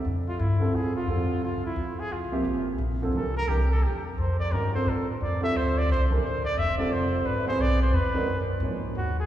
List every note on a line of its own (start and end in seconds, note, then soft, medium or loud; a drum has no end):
0.05 0.38 F2 medium
0.28 0.41 F4 medium
0.39 0.72 G2 medium
0.39 0.77 E4 medium
0.60 1.05 D3 medium
0.60 1.05 G3 medium
0.60 1.05 C4 medium
0.60 1.06 F4 medium
0.60 1.06 A4 medium
0.72 1.06 A2 medium
0.72 0.96 G#4 medium
0.96 1.40 F4 medium
1.07 1.41 F2 medium
1.07 2.03 D3 medium
1.07 2.04 F3 medium
1.07 2.04 G3 medium
1.07 2.04 C4 medium
1.07 2.04 A4 medium
1.42 1.62 C2 medium
1.42 1.64 F4 medium
1.63 2.01 E4 medium
1.63 muted upright bass stroke soft
1.76 2.10 E2 medium
2.00 2.14 G#4 medium
2.11 2.44 C2 medium
2.11 2.67 F4 medium
2.31 2.77 C3 medium
2.31 2.77 F3 medium
2.31 2.77 A#3 medium
2.31 2.77 G4 medium
2.31 2.77 E5 medium
2.45 2.78 A1 medium
2.78 3.12 A#1 medium
3.02 3.13 D3 medium
3.02 3.13 G3 medium
3.02 3.13 C4 medium
3.02 3.14 F4 medium
3.02 3.14 A4 medium
3.12 3.46 C2 medium
3.12 3.34 E3 medium
3.12 3.34 A3 medium
3.12 3.34 D4 medium
3.17 3.35 G4 medium
3.17 3.35 A4 medium
3.17 3.35 A#4 medium
3.37 3.50 A#4 loud
3.47 3.81 C2 loud
3.47 4.00 E3 medium
3.47 4.00 D4 soft
3.47 3.70 G4 medium
3.47 4.01 G4 medium
3.47 4.00 A4 medium
3.47 4.01 A#4 medium
3.71 3.85 A4 medium
3.82 4.16 E2 medium
3.82 4.04 G4 medium
4.18 4.51 F2 medium
4.18 4.38 C5 medium
4.40 4.54 D5 loud
4.51 4.84 G2 medium
4.51 4.71 D#3 medium
4.51 4.71 G#3 medium
4.51 4.71 C#4 medium
4.51 4.72 F#4 medium
4.51 4.73 A#4 medium
4.51 4.72 A#4 medium
4.73 5.03 D3 medium
4.73 5.03 G3 medium
4.73 5.03 C4 medium
4.73 5.03 F4 medium
4.73 5.04 A4 medium
4.73 4.91 C5 loud
4.86 5.19 A2 medium
4.86 5.09 A4 medium
5.21 5.53 F2 medium
5.21 5.41 D5 medium
5.41 5.86 D3 medium
5.41 5.86 G3 medium
5.41 5.86 C4 medium
5.41 5.86 F4 medium
5.41 5.87 A4 medium
5.41 5.58 E5 loud
5.55 5.88 D2 loud
5.55 5.80 C5 medium
5.78 5.90 D5 loud
5.89 6.22 C2 medium
5.89 6.03 C5 medium
6.10 6.21 E3 medium
6.10 6.22 A3 medium
6.10 6.22 D4 medium
6.10 6.22 G4 medium
6.10 6.22 A#4 medium
6.23 6.56 A1 medium
6.23 6.43 C5 medium
6.45 6.60 D5 loud
6.58 6.90 E1 medium
6.58 6.77 E5 loud
6.78 7.22 D3 medium
6.78 7.22 G3 medium
6.78 7.23 C4 medium
6.78 7.23 F4 medium
6.78 7.23 A4 medium
6.78 6.94 D5 medium
6.91 7.24 F1 medium
6.91 7.28 C5 medium
7.25 7.58 G#1 medium
7.25 7.47 B4 medium
7.46 7.91 F#3 medium
7.46 7.91 B3 medium
7.46 7.91 C4 medium
7.46 7.92 E4 medium
7.46 7.92 G#4 medium
7.46 7.63 C5 loud
7.59 7.92 B1 loud
7.59 7.81 D5 loud
7.82 7.96 C5 loud
7.93 8.26 E2 loud
7.93 8.49 B4 medium
8.14 8.26 D#3 medium
8.14 8.26 G#3 medium
8.14 8.27 C#4 medium
8.14 8.27 F#4 medium
8.14 8.27 A#4 medium
8.26 8.59 F#2 medium
8.60 8.94 G#2 medium
8.60 9.13 F3 medium
8.60 9.13 A#3 medium
8.60 9.14 D#4 medium
8.60 9.14 G#4 medium
8.64 9.14 C#5 medium
8.95 9.26 D#2 medium
8.95 9.17 F#4 medium
9.19 9.26 G#4 medium